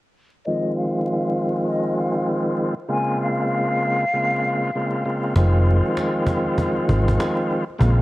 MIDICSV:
0, 0, Header, 1, 5, 480
1, 0, Start_track
1, 0, Key_signature, -4, "minor"
1, 0, Tempo, 612245
1, 361, Time_signature, 4, 2, 24, 8
1, 6287, End_track
2, 0, Start_track
2, 0, Title_t, "Flute"
2, 0, Program_c, 0, 73
2, 358, Note_on_c, 0, 75, 119
2, 575, Note_off_c, 0, 75, 0
2, 604, Note_on_c, 0, 77, 79
2, 1291, Note_off_c, 0, 77, 0
2, 1313, Note_on_c, 0, 75, 82
2, 1532, Note_off_c, 0, 75, 0
2, 1553, Note_on_c, 0, 77, 64
2, 1772, Note_off_c, 0, 77, 0
2, 2280, Note_on_c, 0, 80, 97
2, 2496, Note_off_c, 0, 80, 0
2, 2518, Note_on_c, 0, 77, 91
2, 4168, Note_off_c, 0, 77, 0
2, 6287, End_track
3, 0, Start_track
3, 0, Title_t, "Tonewheel organ"
3, 0, Program_c, 1, 16
3, 363, Note_on_c, 1, 51, 87
3, 365, Note_on_c, 1, 53, 83
3, 367, Note_on_c, 1, 56, 73
3, 370, Note_on_c, 1, 60, 76
3, 371, Note_on_c, 1, 65, 101
3, 2150, Note_off_c, 1, 51, 0
3, 2151, Note_off_c, 1, 53, 0
3, 2152, Note_off_c, 1, 56, 0
3, 2153, Note_off_c, 1, 60, 0
3, 2154, Note_off_c, 1, 65, 0
3, 2261, Note_on_c, 1, 49, 89
3, 2262, Note_on_c, 1, 56, 83
3, 2265, Note_on_c, 1, 58, 82
3, 2266, Note_on_c, 1, 60, 77
3, 2268, Note_on_c, 1, 65, 98
3, 3173, Note_off_c, 1, 49, 0
3, 3174, Note_off_c, 1, 56, 0
3, 3175, Note_off_c, 1, 58, 0
3, 3176, Note_off_c, 1, 60, 0
3, 3177, Note_off_c, 1, 65, 0
3, 3239, Note_on_c, 1, 49, 86
3, 3242, Note_on_c, 1, 56, 81
3, 3244, Note_on_c, 1, 58, 84
3, 3246, Note_on_c, 1, 60, 81
3, 3248, Note_on_c, 1, 65, 86
3, 3691, Note_off_c, 1, 49, 0
3, 3693, Note_off_c, 1, 56, 0
3, 3693, Note_off_c, 1, 58, 0
3, 3694, Note_off_c, 1, 60, 0
3, 3696, Note_off_c, 1, 65, 0
3, 3725, Note_on_c, 1, 49, 74
3, 3727, Note_on_c, 1, 56, 69
3, 3730, Note_on_c, 1, 58, 64
3, 3732, Note_on_c, 1, 60, 71
3, 3733, Note_on_c, 1, 65, 82
3, 3948, Note_off_c, 1, 49, 0
3, 3950, Note_off_c, 1, 56, 0
3, 3951, Note_off_c, 1, 58, 0
3, 3952, Note_off_c, 1, 60, 0
3, 3953, Note_off_c, 1, 65, 0
3, 3957, Note_on_c, 1, 49, 71
3, 3959, Note_on_c, 1, 56, 65
3, 3961, Note_on_c, 1, 58, 63
3, 3963, Note_on_c, 1, 60, 69
3, 3965, Note_on_c, 1, 65, 75
3, 4185, Note_off_c, 1, 49, 0
3, 4186, Note_off_c, 1, 56, 0
3, 4186, Note_off_c, 1, 58, 0
3, 4187, Note_off_c, 1, 60, 0
3, 4188, Note_off_c, 1, 65, 0
3, 4202, Note_on_c, 1, 51, 87
3, 4203, Note_on_c, 1, 53, 85
3, 4206, Note_on_c, 1, 56, 75
3, 4207, Note_on_c, 1, 60, 80
3, 4209, Note_on_c, 1, 65, 100
3, 5989, Note_off_c, 1, 51, 0
3, 5990, Note_off_c, 1, 53, 0
3, 5991, Note_off_c, 1, 56, 0
3, 5992, Note_off_c, 1, 60, 0
3, 5993, Note_off_c, 1, 65, 0
3, 6102, Note_on_c, 1, 49, 93
3, 6105, Note_on_c, 1, 56, 83
3, 6106, Note_on_c, 1, 58, 86
3, 6109, Note_on_c, 1, 60, 76
3, 6111, Note_on_c, 1, 65, 101
3, 6287, Note_off_c, 1, 49, 0
3, 6287, Note_off_c, 1, 56, 0
3, 6287, Note_off_c, 1, 58, 0
3, 6287, Note_off_c, 1, 60, 0
3, 6287, Note_off_c, 1, 65, 0
3, 6287, End_track
4, 0, Start_track
4, 0, Title_t, "Fingered electric bass"
4, 0, Program_c, 2, 33
4, 4199, Note_on_c, 2, 29, 102
4, 4541, Note_off_c, 2, 29, 0
4, 5402, Note_on_c, 2, 32, 87
4, 5611, Note_off_c, 2, 32, 0
4, 6119, Note_on_c, 2, 34, 108
4, 6287, Note_off_c, 2, 34, 0
4, 6287, End_track
5, 0, Start_track
5, 0, Title_t, "Cajon"
5, 4198, Note_on_c, 9, 36, 111
5, 4277, Note_off_c, 9, 36, 0
5, 4352, Note_on_c, 9, 38, 19
5, 4431, Note_off_c, 9, 38, 0
5, 4436, Note_on_c, 9, 38, 37
5, 4515, Note_off_c, 9, 38, 0
5, 4590, Note_on_c, 9, 38, 31
5, 4668, Note_off_c, 9, 38, 0
5, 4681, Note_on_c, 9, 38, 98
5, 4759, Note_off_c, 9, 38, 0
5, 4830, Note_on_c, 9, 38, 20
5, 4909, Note_off_c, 9, 38, 0
5, 4913, Note_on_c, 9, 36, 97
5, 4992, Note_off_c, 9, 36, 0
5, 5072, Note_on_c, 9, 38, 30
5, 5150, Note_off_c, 9, 38, 0
5, 5157, Note_on_c, 9, 36, 85
5, 5161, Note_on_c, 9, 38, 51
5, 5236, Note_off_c, 9, 36, 0
5, 5239, Note_off_c, 9, 38, 0
5, 5315, Note_on_c, 9, 38, 20
5, 5393, Note_off_c, 9, 38, 0
5, 5402, Note_on_c, 9, 36, 89
5, 5480, Note_off_c, 9, 36, 0
5, 5553, Note_on_c, 9, 36, 99
5, 5631, Note_off_c, 9, 36, 0
5, 5646, Note_on_c, 9, 38, 110
5, 5724, Note_off_c, 9, 38, 0
5, 5793, Note_on_c, 9, 38, 20
5, 5871, Note_off_c, 9, 38, 0
5, 5883, Note_on_c, 9, 38, 41
5, 5961, Note_off_c, 9, 38, 0
5, 6034, Note_on_c, 9, 38, 27
5, 6112, Note_off_c, 9, 38, 0
5, 6119, Note_on_c, 9, 36, 112
5, 6198, Note_off_c, 9, 36, 0
5, 6287, End_track
0, 0, End_of_file